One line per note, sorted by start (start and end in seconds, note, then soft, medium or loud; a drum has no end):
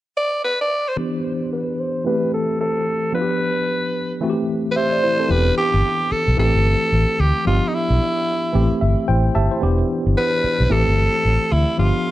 0.17 0.42 D5 loud
0.45 0.59 B4 medium
0.61 0.90 D5 medium
0.88 1.52 C5 medium
0.96 2.03 E3 medium
0.96 2.03 B3 medium
0.96 2.04 D4 medium
0.96 2.04 G4 medium
1.53 1.81 B4 medium
1.80 2.06 C5 medium
2.04 3.11 E3 medium
2.04 3.11 A3 medium
2.04 3.12 C4 medium
2.04 3.12 G4 medium
2.04 2.31 B4 medium
2.34 2.58 A4 medium
2.61 3.10 A4 medium
3.12 4.19 F3 medium
3.12 4.19 B3 medium
3.12 4.20 D4 medium
3.12 3.22 F4 soft
3.12 4.18 B4 medium
3.21 4.24 G4 medium
4.21 5.27 E3 medium
4.21 5.28 A3 medium
4.21 4.75 C4 medium
4.21 4.30 F#4 medium
4.30 4.76 G4 medium
4.71 4.78 B4 medium
4.76 4.92 G4 medium
4.76 5.33 C5 loud
4.76 4.92 E5 medium
4.92 5.02 D5 medium
5.03 5.19 E4 medium
5.03 5.19 C5 medium
5.19 5.45 C4 medium
5.19 5.45 A4 medium
5.29 5.49 E1 loud
5.29 6.35 E3 medium
5.29 6.36 B3 medium
5.29 6.36 D4 medium
5.29 6.37 G4 medium
5.29 5.58 B4 loud
5.58 6.14 G4 loud
5.74 5.81 G1 medium
6.12 6.39 A4 medium
6.12 muted fingered electric bass stroke soft
6.28 6.35 B1 medium
6.37 6.50 A1 loud
6.37 7.43 E3 medium
6.37 7.44 A3 medium
6.37 7.44 C4 medium
6.37 7.44 G4 medium
6.37 7.22 A4 loud
6.55 6.74 G1 medium
6.92 7.04 A1 medium
7.20 7.31 D2 medium
7.20 7.47 G4 medium
7.45 7.58 G1 loud
7.45 8.52 F3 medium
7.45 8.52 B3 medium
7.45 8.52 D4 medium
7.45 7.70 F4 medium
7.45 8.53 G4 medium
7.68 7.76 D#4 medium
7.74 8.82 E4 medium
7.90 7.98 B1 medium
8.53 8.66 A1 loud
8.53 9.59 E3 medium
8.53 9.60 A3 medium
8.53 9.60 C4 medium
8.53 9.08 G4 medium
8.81 8.93 G1 medium
8.81 9.06 E5 medium
9.08 9.28 A1 medium
9.08 9.34 E4 medium
9.08 9.34 C5 medium
9.08 9.33 G5 medium
9.35 9.47 G1 medium
9.35 9.51 G4 medium
9.35 9.51 E5 medium
9.35 9.60 A5 medium
9.51 9.77 E4 medium
9.51 9.77 C5 medium
9.61 9.82 E1 loud
9.61 10.67 E3 medium
9.61 10.68 B3 medium
9.61 10.68 D4 medium
9.61 10.69 G4 medium
10.06 10.14 G1 medium
10.18 10.73 B4 loud
10.44 muted fingered electric bass stroke soft
10.60 10.68 B1 medium
10.69 10.82 A1 loud
10.69 11.76 E3 medium
10.69 11.76 A3 medium
10.69 11.76 C4 medium
10.69 11.77 G4 medium
10.69 11.54 A4 loud
10.88 11.06 G1 medium
11.25 11.37 A1 medium
11.52 11.64 D2 loud
11.52 11.79 E4 medium
11.77 11.90 G1 loud
11.77 12.11 F3 medium
11.77 12.11 B3 medium
11.77 12.11 D4 medium
11.77 12.11 F4 medium
11.77 12.11 G4 medium